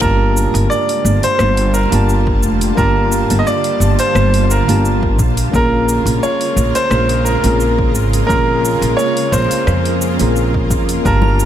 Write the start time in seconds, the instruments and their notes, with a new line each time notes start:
0.00 upright bass G1, ambient pad D3 G3 A#3 F4 A5, tine electric piano A#3 D4 F4 G4, grand piano A#4, kick, shaker
0.04 tine electric piano A5
0.37 shaker
0.54 upright bass G1, open hi-hat, shaker
0.70 grand piano D5, shaker
0.89 open hi-hat
1.05 upright bass G1, shaker
1.23 grand piano C5, open hi-hat, shaker
1.39 upright bass G1, cross-stick, shaker
1.57 open hi-hat
1.74 grand piano A#4, shaker
1.90 upright bass G1, tine electric piano A#3 D4 F4 G4, open hi-hat, shaker
1.95 tine electric piano A5
2.09 shaker
2.27 kick
2.43 upright bass F1, shaker
2.61 open hi-hat, shaker
2.75 upright bass G1, tine electric piano A#3 D4 F4 G4, grand piano A#4, kick, shaker
2.80 tine electric piano A5
3.12 shaker
3.30 upright bass G1, open hi-hat, shaker
3.39 grand piano D#5
3.47 grand piano D5, shaker
3.64 open hi-hat
3.80 upright bass G1, shaker
3.99 grand piano C5, open hi-hat, shaker
4.15 upright bass G1, cross-stick, shaker
4.34 open hi-hat
4.44 grand piano C5
4.51 grand piano A#4, shaker
4.68 upright bass G1, tine electric piano A#3 D4 F4 G4 A5, open hi-hat, shaker
4.85 shaker
5.03 kick
5.19 upright bass A#1, ambient pad C#3 G#3 A#4, kick, shaker
5.37 open hi-hat, shaker
5.51 upright bass A#1, tine electric piano A#3 C#4 F4 G#4, kick, shaker
5.55 grand piano A#4, tine electric piano A#4
5.89 shaker
6.05 upright bass A#1, open hi-hat, shaker
6.23 grand piano C#5, shaker
6.41 open hi-hat
6.56 upright bass A#1, shaker
6.75 grand piano C5, open hi-hat, shaker
6.90 upright bass A#1, cross-stick, shaker
7.09 open hi-hat
7.25 grand piano A#4, shaker
7.43 upright bass A#1, tine electric piano C4 C#4 F4 G#4, open hi-hat, shaker
7.47 tine electric piano A#4
7.60 shaker
7.79 kick
7.95 upright bass G#1, shaker
8.13 open hi-hat, shaker
8.27 upright bass A#1, tine electric piano A#3 C#4 F4 G#4, grand piano A#4, kick, shaker
8.31 tine electric piano A#4
8.65 shaker
8.82 upright bass A#1, open hi-hat, shaker
8.97 grand piano C#5, shaker
9.17 open hi-hat
9.32 upright bass A#1, grand piano C5, shaker
9.51 open hi-hat, shaker
9.67 upright bass F2, cross-stick, shaker
9.85 open hi-hat
10.02 shaker
10.18 upright bass A#1, tine electric piano C4 C#4 F4 G#4, open hi-hat, shaker
10.22 tine electric piano A#4
10.36 shaker
10.54 kick
10.70 upright bass F2, kick, shaker
10.89 open hi-hat, shaker
11.03 upright bass G1, ambient pad D3 G3 A5, tine electric piano A#3 D4 F4 G4, grand piano A#4, synth texture F6, kick, shaker
11.07 tine electric piano A5
11.22 high conga
11.40 shaker